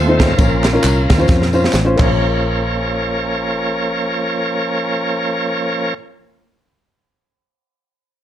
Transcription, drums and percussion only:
0.20 kick, snare, ride bell, tambourine
0.38 kick, ride bell, tambourine
0.64 snare, clap, ride bell, tambourine
0.84 clap, ride bell, tambourine
1.10 kick, snare, ride bell, tambourine
1.28 kick, snare, tambourine
1.42 snare
1.53 tambourine
1.64 snare
1.73 snare, clap, tambourine
1.99 kick, clap, crash

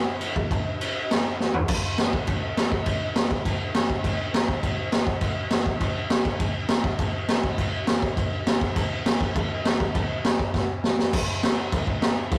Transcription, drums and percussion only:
0.21 crash
0.36 kick
0.51 kick, crash
0.81 crash
1.11 snare, crash
1.40 snare
1.54 floor tom
1.68 kick, crash
1.98 snare, crash
2.13 kick
2.27 kick, crash
2.57 snare, crash
2.72 kick
2.86 kick, crash
3.16 snare, crash
3.31 kick
3.45 kick, crash
3.75 snare, crash
3.90 kick
4.04 kick, crash
4.34 snare, crash
4.48 kick
4.63 kick, crash
4.92 snare, crash
5.07 kick
5.21 kick, crash
5.51 snare, crash
5.66 kick
5.81 kick, crash
6.10 snare, crash
6.25 kick
6.40 kick, crash
6.69 snare, crash
6.84 kick
6.99 kick, crash
7.29 snare, crash
7.44 kick
7.58 kick, crash
7.87 snare, crash
8.02 kick
8.17 kick, crash
8.47 snare, crash
8.61 kick
8.76 kick, crash
9.06 snare, crash
9.21 kick
9.36 kick, crash
9.65 snare, crash
9.80 kick
9.95 kick, crash
10.25 snare, crash
10.39 kick
10.54 kick, snare
10.84 snare
10.99 snare
11.13 kick, crash
11.43 snare, crash
11.72 kick, crash
11.87 kick
12.02 snare, crash
12.32 kick, crash

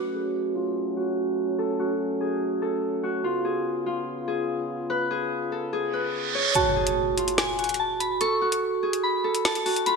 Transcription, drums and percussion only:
6.55 closed hi-hat
6.87 closed hi-hat
7.18 closed hi-hat
7.28 closed hi-hat
7.38 snare
7.59 closed hi-hat
7.64 closed hi-hat
7.69 closed hi-hat
7.74 closed hi-hat
8.00 closed hi-hat
8.21 closed hi-hat
8.52 closed hi-hat
8.93 closed hi-hat
9.35 closed hi-hat
9.45 snare
9.55 closed hi-hat
9.66 open hi-hat
9.76 closed hi-hat
9.86 closed hi-hat

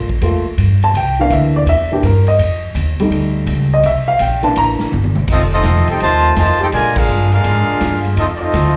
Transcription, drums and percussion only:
0.09 kick
0.21 ride
0.58 hi-hat pedal, ride
0.82 ride
0.95 ride
1.30 hi-hat pedal, ride
1.67 ride
2.03 hi-hat pedal, ride
2.27 ride
2.39 ride
2.76 hi-hat pedal, ride
3.00 ride
3.12 ride
3.47 hi-hat pedal, ride
3.83 ride
4.19 hi-hat pedal, ride
4.43 ride
4.56 ride
4.79 snare
4.92 hi-hat pedal, high tom
5.04 high tom
5.15 mid tom
5.27 kick, crash
5.63 snare, hi-hat pedal, ride
5.87 ride
6.00 ride
6.36 snare, hi-hat pedal, ride
6.72 ride
6.96 kick, crash
7.08 hi-hat pedal
7.32 ride
7.44 ride
7.81 snare, hi-hat pedal, ride
8.05 ride
8.17 ride
8.53 snare, hi-hat pedal, ride

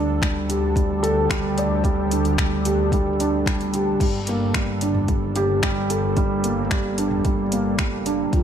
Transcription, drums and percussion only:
0.22 finger snap, kick, closed hi-hat
0.50 closed hi-hat
0.76 kick, closed hi-hat
1.04 closed hi-hat
1.30 finger snap, kick, closed hi-hat
1.58 closed hi-hat
1.84 kick, closed hi-hat
2.11 closed hi-hat
2.25 closed hi-hat
2.38 finger snap, kick, closed hi-hat
2.65 closed hi-hat
2.92 kick, closed hi-hat
3.20 closed hi-hat
3.46 finger snap, kick, closed hi-hat
3.61 closed hi-hat
3.74 closed hi-hat
4.00 kick, closed hi-hat, crash
4.27 closed hi-hat
4.54 finger snap, kick, closed hi-hat
4.81 closed hi-hat
4.95 mid tom
5.08 kick, closed hi-hat
5.36 closed hi-hat
5.63 finger snap, kick, closed hi-hat
5.90 closed hi-hat
6.17 kick, closed hi-hat
6.44 closed hi-hat
6.71 finger snap, kick, closed hi-hat
6.98 closed hi-hat
7.11 mid tom
7.25 kick, closed hi-hat
7.52 closed hi-hat
7.79 finger snap, kick, closed hi-hat
8.06 closed hi-hat
8.33 kick, closed hi-hat

